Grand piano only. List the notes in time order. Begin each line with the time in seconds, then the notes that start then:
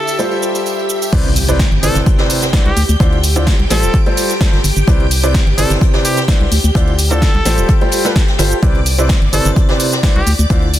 Already playing: D3 E4 F4 C5 D5
0.19 G3 F4 G4 A4 C5
1.13 C3 E4 B4 C5 D5
1.48 C3 E4 B4 C5 D5
1.83 C3 E4 B4 C5 D5
2.19 C3 E4 B4 C5 D5
2.53 D3 E4 B4 C5 D5
3.00 D3 E4 F4 C5 D5
3.36 D3 E4 F4 C5 D5
3.70 G3 F4 G4 A4 C5
4.06 G3 F4 G4 A4 C5
4.41 G3 F4 G4 A4 C5
4.88 C3 E4 B4 C5 D5
5.23 C3 E4 B4 C5 D5
5.58 C3 E4 B4 C5 D5
5.94 C3 E4 B4 C5 D5
6.28 D3 E4 B4 C5 D5
6.75 D3 E4 F4 C5 D5
7.11 D3 E4 F4 C5 D5
7.45 G3 F4 G4 A4 C5
7.81 G3 F4 G4 A4 C5
8.05 G3 F4 G4 A4 B4
8.39 F4 G4 A4 C5
8.63 C3 E4 B4 C5 D5
8.98 C3 E4 B4 C5 D5
9.33 C3 E4 B4 C5 D5
9.69 C3 E4 B4 C5 D5
10.03 D3 E4 B4 C5 D5
10.50 D3 E4 F4 C5 D5